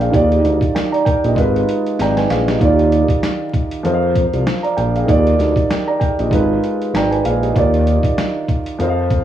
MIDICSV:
0, 0, Header, 1, 4, 480
1, 0, Start_track
1, 0, Key_signature, -3, "major"
1, 0, Tempo, 618557
1, 105, Time_signature, 4, 2, 24, 8
1, 7172, End_track
2, 0, Start_track
2, 0, Title_t, "Grand piano"
2, 0, Program_c, 0, 0
2, 0, Control_c, 0, 64, 127
2, 0, Note_on_c, 0, 53, 81
2, 0, Note_on_c, 0, 65, 71
2, 0, Note_on_c, 0, 70, 58
2, 0, Note_on_c, 0, 72, 70
2, 0, Note_on_c, 0, 74, 56
2, 0, Note_on_c, 0, 77, 85
2, 0, Note_on_c, 0, 79, 73
2, 0, Note_on_c, 0, 82, 65
2, 9, Note_off_c, 0, 77, 0
2, 9, Note_on_c, 0, 77, 65
2, 14, Note_on_c, 0, 68, 53
2, 76, Note_on_c, 0, 51, 76
2, 81, Note_off_c, 0, 53, 0
2, 82, Note_off_c, 0, 65, 0
2, 85, Note_on_c, 0, 63, 69
2, 93, Note_on_c, 0, 65, 66
2, 103, Note_on_c, 0, 67, 68
2, 112, Note_off_c, 0, 74, 0
2, 112, Note_on_c, 0, 74, 81
2, 116, Note_off_c, 0, 79, 0
2, 116, Control_c, 0, 64, 0
2, 118, Note_off_c, 0, 82, 0
2, 119, Note_off_c, 0, 70, 0
2, 121, Note_off_c, 0, 72, 0
2, 234, Note_off_c, 0, 77, 0
2, 237, Note_off_c, 0, 68, 0
2, 272, Control_c, 0, 64, 127
2, 574, Note_off_c, 0, 67, 0
2, 579, Note_off_c, 0, 74, 0
2, 582, Note_on_c, 0, 79, 58
2, 584, Note_on_c, 0, 70, 53
2, 714, Note_off_c, 0, 79, 0
2, 715, Note_on_c, 0, 82, 67
2, 716, Note_off_c, 0, 70, 0
2, 719, Note_on_c, 0, 74, 61
2, 815, Note_off_c, 0, 82, 0
2, 816, Note_on_c, 0, 79, 72
2, 818, Note_off_c, 0, 74, 0
2, 821, Note_on_c, 0, 70, 59
2, 951, Note_off_c, 0, 79, 0
2, 954, Note_off_c, 0, 70, 0
2, 967, Note_on_c, 0, 75, 61
2, 971, Note_on_c, 0, 67, 49
2, 1031, Note_off_c, 0, 51, 0
2, 1035, Note_off_c, 0, 63, 0
2, 1040, Note_off_c, 0, 65, 0
2, 1047, Note_on_c, 0, 56, 76
2, 1056, Note_on_c, 0, 63, 66
2, 1065, Note_on_c, 0, 65, 68
2, 1073, Note_on_c, 0, 70, 67
2, 1074, Control_c, 0, 64, 0
2, 1082, Note_on_c, 0, 71, 75
2, 1185, Control_c, 0, 64, 127
2, 1193, Note_off_c, 0, 75, 0
2, 1195, Note_off_c, 0, 67, 0
2, 1539, Note_off_c, 0, 70, 0
2, 1544, Note_off_c, 0, 71, 0
2, 1561, Note_on_c, 0, 79, 77
2, 1561, Note_on_c, 0, 82, 65
2, 1567, Note_on_c, 0, 74, 50
2, 1680, Note_on_c, 0, 80, 67
2, 1684, Note_off_c, 0, 82, 0
2, 1685, Note_on_c, 0, 71, 56
2, 1687, Note_off_c, 0, 74, 0
2, 1777, Note_off_c, 0, 79, 0
2, 1778, Note_off_c, 0, 80, 0
2, 1781, Note_off_c, 0, 71, 0
2, 1787, Note_on_c, 0, 77, 73
2, 1792, Note_on_c, 0, 68, 58
2, 1917, Note_off_c, 0, 77, 0
2, 1920, Note_off_c, 0, 68, 0
2, 1921, Note_on_c, 0, 75, 61
2, 1926, Note_on_c, 0, 67, 54
2, 1996, Note_off_c, 0, 56, 0
2, 2001, Note_off_c, 0, 63, 0
2, 2006, Note_off_c, 0, 65, 0
2, 2010, Note_on_c, 0, 51, 81
2, 2019, Note_on_c, 0, 63, 68
2, 2025, Note_off_c, 0, 67, 0
2, 2028, Note_on_c, 0, 65, 76
2, 2036, Control_c, 0, 64, 0
2, 2036, Note_on_c, 0, 67, 66
2, 2044, Note_on_c, 0, 74, 82
2, 2150, Note_off_c, 0, 75, 0
2, 2162, Control_c, 0, 64, 127
2, 2958, Note_off_c, 0, 51, 0
2, 2962, Note_off_c, 0, 63, 0
2, 2967, Note_off_c, 0, 65, 0
2, 2971, Note_off_c, 0, 67, 0
2, 2975, Note_off_c, 0, 74, 0
2, 2975, Note_on_c, 0, 53, 80
2, 2984, Note_on_c, 0, 65, 69
2, 2992, Note_on_c, 0, 70, 72
2, 2993, Control_c, 0, 64, 0
2, 3000, Note_on_c, 0, 72, 69
2, 3010, Note_on_c, 0, 75, 69
2, 3055, Note_off_c, 0, 75, 0
2, 3061, Note_on_c, 0, 77, 84
2, 3136, Control_c, 0, 64, 127
2, 3459, Note_off_c, 0, 70, 0
2, 3463, Note_off_c, 0, 72, 0
2, 3494, Note_off_c, 0, 77, 0
2, 3594, Note_on_c, 0, 82, 65
2, 3599, Note_on_c, 0, 74, 57
2, 3695, Note_off_c, 0, 82, 0
2, 3698, Note_off_c, 0, 74, 0
2, 3700, Note_on_c, 0, 79, 71
2, 3705, Note_on_c, 0, 70, 58
2, 3834, Note_off_c, 0, 79, 0
2, 3836, Note_off_c, 0, 70, 0
2, 3851, Note_on_c, 0, 77, 63
2, 3857, Note_on_c, 0, 68, 54
2, 3920, Note_off_c, 0, 53, 0
2, 3920, Note_on_c, 0, 51, 74
2, 3925, Note_off_c, 0, 65, 0
2, 3929, Note_on_c, 0, 63, 71
2, 3939, Note_on_c, 0, 65, 64
2, 3947, Note_on_c, 0, 67, 69
2, 3956, Control_c, 0, 64, 0
2, 3956, Note_on_c, 0, 74, 87
2, 4075, Note_off_c, 0, 77, 0
2, 4075, Control_c, 0, 64, 127
2, 4078, Note_off_c, 0, 68, 0
2, 4416, Note_off_c, 0, 67, 0
2, 4421, Note_off_c, 0, 74, 0
2, 4424, Note_on_c, 0, 79, 60
2, 4428, Note_on_c, 0, 70, 52
2, 4556, Note_off_c, 0, 79, 0
2, 4557, Note_off_c, 0, 70, 0
2, 4559, Note_on_c, 0, 82, 71
2, 4563, Note_on_c, 0, 74, 60
2, 4655, Note_on_c, 0, 79, 72
2, 4657, Note_off_c, 0, 82, 0
2, 4660, Note_off_c, 0, 74, 0
2, 4660, Note_on_c, 0, 70, 60
2, 4790, Note_off_c, 0, 79, 0
2, 4793, Note_off_c, 0, 70, 0
2, 4808, Note_on_c, 0, 75, 62
2, 4813, Note_on_c, 0, 67, 52
2, 4873, Note_off_c, 0, 51, 0
2, 4877, Note_off_c, 0, 63, 0
2, 4882, Note_off_c, 0, 65, 0
2, 4890, Note_on_c, 0, 56, 73
2, 4899, Note_on_c, 0, 63, 65
2, 4907, Note_on_c, 0, 65, 69
2, 4915, Control_c, 0, 64, 0
2, 4916, Note_on_c, 0, 70, 69
2, 4924, Note_on_c, 0, 71, 77
2, 5034, Note_off_c, 0, 75, 0
2, 5035, Control_c, 0, 64, 127
2, 5036, Note_off_c, 0, 67, 0
2, 5381, Note_off_c, 0, 70, 0
2, 5385, Note_off_c, 0, 71, 0
2, 5401, Note_on_c, 0, 82, 64
2, 5402, Note_on_c, 0, 79, 75
2, 5405, Note_on_c, 0, 74, 51
2, 5520, Note_on_c, 0, 80, 70
2, 5523, Note_on_c, 0, 71, 60
2, 5524, Note_off_c, 0, 82, 0
2, 5527, Note_off_c, 0, 74, 0
2, 5617, Note_off_c, 0, 79, 0
2, 5618, Note_off_c, 0, 80, 0
2, 5620, Note_off_c, 0, 71, 0
2, 5628, Note_on_c, 0, 77, 76
2, 5632, Note_on_c, 0, 68, 58
2, 5760, Note_off_c, 0, 68, 0
2, 5762, Note_on_c, 0, 75, 64
2, 5766, Note_on_c, 0, 67, 57
2, 5838, Note_off_c, 0, 56, 0
2, 5842, Note_off_c, 0, 63, 0
2, 5847, Note_off_c, 0, 65, 0
2, 5850, Note_off_c, 0, 77, 0
2, 5850, Note_on_c, 0, 51, 81
2, 5859, Note_on_c, 0, 63, 67
2, 5864, Note_off_c, 0, 67, 0
2, 5868, Note_on_c, 0, 65, 75
2, 5874, Control_c, 0, 64, 0
2, 5876, Note_on_c, 0, 67, 68
2, 5885, Note_on_c, 0, 74, 82
2, 5990, Note_off_c, 0, 75, 0
2, 6010, Control_c, 0, 64, 127
2, 6798, Note_off_c, 0, 51, 0
2, 6802, Note_off_c, 0, 63, 0
2, 6807, Note_off_c, 0, 65, 0
2, 6811, Note_off_c, 0, 67, 0
2, 6816, Note_off_c, 0, 74, 0
2, 6816, Note_on_c, 0, 53, 83
2, 6825, Note_on_c, 0, 65, 69
2, 6833, Control_c, 0, 64, 0
2, 6833, Note_on_c, 0, 70, 73
2, 6843, Note_on_c, 0, 72, 69
2, 6850, Note_on_c, 0, 75, 69
2, 6895, Note_off_c, 0, 75, 0
2, 6900, Note_on_c, 0, 77, 84
2, 6959, Control_c, 0, 64, 127
2, 7172, Note_off_c, 0, 53, 0
2, 7172, Note_off_c, 0, 65, 0
2, 7172, Note_off_c, 0, 70, 0
2, 7172, Note_off_c, 0, 72, 0
2, 7172, Note_off_c, 0, 77, 0
2, 7172, End_track
3, 0, Start_track
3, 0, Title_t, "Analog synth bass"
3, 0, Program_c, 1, 38
3, 104, Note_on_c, 1, 39, 108
3, 309, Note_off_c, 1, 39, 0
3, 343, Note_on_c, 1, 38, 97
3, 461, Note_off_c, 1, 38, 0
3, 962, Note_on_c, 1, 34, 92
3, 1049, Note_off_c, 1, 34, 0
3, 1058, Note_on_c, 1, 32, 97
3, 1265, Note_off_c, 1, 32, 0
3, 1543, Note_on_c, 1, 32, 99
3, 1748, Note_off_c, 1, 32, 0
3, 1784, Note_on_c, 1, 34, 102
3, 1989, Note_off_c, 1, 34, 0
3, 2024, Note_on_c, 1, 39, 107
3, 2347, Note_off_c, 1, 39, 0
3, 2984, Note_on_c, 1, 41, 96
3, 3307, Note_off_c, 1, 41, 0
3, 3361, Note_on_c, 1, 36, 91
3, 3448, Note_off_c, 1, 36, 0
3, 3702, Note_on_c, 1, 34, 89
3, 3908, Note_off_c, 1, 34, 0
3, 3945, Note_on_c, 1, 39, 114
3, 4149, Note_off_c, 1, 39, 0
3, 4184, Note_on_c, 1, 38, 98
3, 4302, Note_off_c, 1, 38, 0
3, 4801, Note_on_c, 1, 34, 92
3, 4889, Note_off_c, 1, 34, 0
3, 4897, Note_on_c, 1, 32, 100
3, 5105, Note_off_c, 1, 32, 0
3, 5382, Note_on_c, 1, 32, 94
3, 5588, Note_off_c, 1, 32, 0
3, 5622, Note_on_c, 1, 34, 99
3, 5828, Note_off_c, 1, 34, 0
3, 5865, Note_on_c, 1, 39, 108
3, 6187, Note_off_c, 1, 39, 0
3, 6822, Note_on_c, 1, 41, 99
3, 7146, Note_off_c, 1, 41, 0
3, 7172, End_track
4, 0, Start_track
4, 0, Title_t, "Drums"
4, 7, Note_on_c, 9, 42, 53
4, 85, Note_off_c, 9, 42, 0
4, 104, Note_on_c, 9, 36, 110
4, 109, Note_on_c, 9, 42, 89
4, 182, Note_off_c, 9, 36, 0
4, 187, Note_off_c, 9, 42, 0
4, 247, Note_on_c, 9, 42, 37
4, 325, Note_off_c, 9, 42, 0
4, 347, Note_on_c, 9, 42, 72
4, 425, Note_off_c, 9, 42, 0
4, 473, Note_on_c, 9, 36, 85
4, 485, Note_on_c, 9, 42, 58
4, 551, Note_off_c, 9, 36, 0
4, 562, Note_off_c, 9, 42, 0
4, 589, Note_on_c, 9, 38, 120
4, 593, Note_on_c, 9, 42, 94
4, 666, Note_off_c, 9, 38, 0
4, 671, Note_off_c, 9, 42, 0
4, 732, Note_on_c, 9, 42, 35
4, 809, Note_off_c, 9, 42, 0
4, 825, Note_on_c, 9, 36, 92
4, 831, Note_on_c, 9, 42, 64
4, 902, Note_off_c, 9, 36, 0
4, 908, Note_off_c, 9, 42, 0
4, 965, Note_on_c, 9, 42, 54
4, 1043, Note_off_c, 9, 42, 0
4, 1057, Note_on_c, 9, 36, 93
4, 1071, Note_on_c, 9, 42, 80
4, 1135, Note_off_c, 9, 36, 0
4, 1148, Note_off_c, 9, 42, 0
4, 1212, Note_on_c, 9, 42, 34
4, 1290, Note_off_c, 9, 42, 0
4, 1309, Note_on_c, 9, 42, 67
4, 1387, Note_off_c, 9, 42, 0
4, 1448, Note_on_c, 9, 42, 52
4, 1525, Note_off_c, 9, 42, 0
4, 1548, Note_on_c, 9, 38, 56
4, 1551, Note_on_c, 9, 42, 83
4, 1625, Note_off_c, 9, 38, 0
4, 1628, Note_off_c, 9, 42, 0
4, 1685, Note_on_c, 9, 38, 59
4, 1686, Note_on_c, 9, 42, 35
4, 1763, Note_off_c, 9, 38, 0
4, 1764, Note_off_c, 9, 42, 0
4, 1787, Note_on_c, 9, 42, 80
4, 1788, Note_on_c, 9, 38, 89
4, 1865, Note_off_c, 9, 38, 0
4, 1865, Note_off_c, 9, 42, 0
4, 1926, Note_on_c, 9, 38, 90
4, 1927, Note_on_c, 9, 42, 53
4, 2003, Note_off_c, 9, 38, 0
4, 2005, Note_off_c, 9, 42, 0
4, 2024, Note_on_c, 9, 36, 108
4, 2028, Note_on_c, 9, 42, 84
4, 2102, Note_off_c, 9, 36, 0
4, 2106, Note_off_c, 9, 42, 0
4, 2167, Note_on_c, 9, 42, 35
4, 2245, Note_off_c, 9, 42, 0
4, 2268, Note_on_c, 9, 42, 72
4, 2345, Note_off_c, 9, 42, 0
4, 2394, Note_on_c, 9, 36, 89
4, 2405, Note_on_c, 9, 42, 57
4, 2471, Note_off_c, 9, 36, 0
4, 2482, Note_off_c, 9, 42, 0
4, 2507, Note_on_c, 9, 38, 120
4, 2512, Note_on_c, 9, 42, 94
4, 2585, Note_off_c, 9, 38, 0
4, 2590, Note_off_c, 9, 42, 0
4, 2744, Note_on_c, 9, 36, 93
4, 2748, Note_on_c, 9, 42, 65
4, 2822, Note_off_c, 9, 36, 0
4, 2825, Note_off_c, 9, 42, 0
4, 2883, Note_on_c, 9, 42, 54
4, 2960, Note_off_c, 9, 42, 0
4, 2987, Note_on_c, 9, 42, 82
4, 3065, Note_off_c, 9, 42, 0
4, 3226, Note_on_c, 9, 36, 90
4, 3227, Note_on_c, 9, 42, 66
4, 3303, Note_off_c, 9, 36, 0
4, 3305, Note_off_c, 9, 42, 0
4, 3365, Note_on_c, 9, 42, 54
4, 3443, Note_off_c, 9, 42, 0
4, 3468, Note_on_c, 9, 38, 115
4, 3469, Note_on_c, 9, 42, 80
4, 3546, Note_off_c, 9, 38, 0
4, 3546, Note_off_c, 9, 42, 0
4, 3605, Note_on_c, 9, 42, 34
4, 3683, Note_off_c, 9, 42, 0
4, 3707, Note_on_c, 9, 42, 83
4, 3785, Note_off_c, 9, 42, 0
4, 3846, Note_on_c, 9, 42, 51
4, 3924, Note_off_c, 9, 42, 0
4, 3944, Note_on_c, 9, 36, 109
4, 3949, Note_on_c, 9, 42, 85
4, 4022, Note_off_c, 9, 36, 0
4, 4027, Note_off_c, 9, 42, 0
4, 4088, Note_on_c, 9, 42, 36
4, 4166, Note_off_c, 9, 42, 0
4, 4184, Note_on_c, 9, 38, 34
4, 4189, Note_on_c, 9, 42, 72
4, 4262, Note_off_c, 9, 38, 0
4, 4267, Note_off_c, 9, 42, 0
4, 4314, Note_on_c, 9, 36, 86
4, 4324, Note_on_c, 9, 42, 58
4, 4391, Note_off_c, 9, 36, 0
4, 4402, Note_off_c, 9, 42, 0
4, 4428, Note_on_c, 9, 38, 121
4, 4433, Note_on_c, 9, 42, 100
4, 4506, Note_off_c, 9, 38, 0
4, 4510, Note_off_c, 9, 42, 0
4, 4664, Note_on_c, 9, 36, 93
4, 4668, Note_on_c, 9, 42, 64
4, 4742, Note_off_c, 9, 36, 0
4, 4746, Note_off_c, 9, 42, 0
4, 4804, Note_on_c, 9, 42, 56
4, 4882, Note_off_c, 9, 42, 0
4, 4897, Note_on_c, 9, 36, 93
4, 4910, Note_on_c, 9, 42, 82
4, 4974, Note_off_c, 9, 36, 0
4, 4987, Note_off_c, 9, 42, 0
4, 5149, Note_on_c, 9, 42, 67
4, 5227, Note_off_c, 9, 42, 0
4, 5288, Note_on_c, 9, 42, 50
4, 5366, Note_off_c, 9, 42, 0
4, 5389, Note_on_c, 9, 38, 116
4, 5390, Note_on_c, 9, 42, 83
4, 5467, Note_off_c, 9, 38, 0
4, 5467, Note_off_c, 9, 42, 0
4, 5527, Note_on_c, 9, 42, 35
4, 5605, Note_off_c, 9, 42, 0
4, 5626, Note_on_c, 9, 42, 81
4, 5703, Note_off_c, 9, 42, 0
4, 5767, Note_on_c, 9, 42, 52
4, 5844, Note_off_c, 9, 42, 0
4, 5864, Note_on_c, 9, 36, 112
4, 5868, Note_on_c, 9, 42, 84
4, 5941, Note_off_c, 9, 36, 0
4, 5946, Note_off_c, 9, 42, 0
4, 6005, Note_on_c, 9, 42, 36
4, 6083, Note_off_c, 9, 42, 0
4, 6107, Note_on_c, 9, 42, 74
4, 6185, Note_off_c, 9, 42, 0
4, 6233, Note_on_c, 9, 36, 90
4, 6243, Note_on_c, 9, 42, 59
4, 6310, Note_off_c, 9, 36, 0
4, 6321, Note_off_c, 9, 42, 0
4, 6347, Note_on_c, 9, 38, 121
4, 6352, Note_on_c, 9, 42, 96
4, 6425, Note_off_c, 9, 38, 0
4, 6430, Note_off_c, 9, 42, 0
4, 6583, Note_on_c, 9, 36, 93
4, 6587, Note_on_c, 9, 42, 67
4, 6660, Note_off_c, 9, 36, 0
4, 6665, Note_off_c, 9, 42, 0
4, 6721, Note_on_c, 9, 42, 54
4, 6798, Note_off_c, 9, 42, 0
4, 6826, Note_on_c, 9, 42, 82
4, 6904, Note_off_c, 9, 42, 0
4, 7065, Note_on_c, 9, 36, 91
4, 7067, Note_on_c, 9, 42, 70
4, 7143, Note_off_c, 9, 36, 0
4, 7144, Note_off_c, 9, 42, 0
4, 7172, End_track
0, 0, End_of_file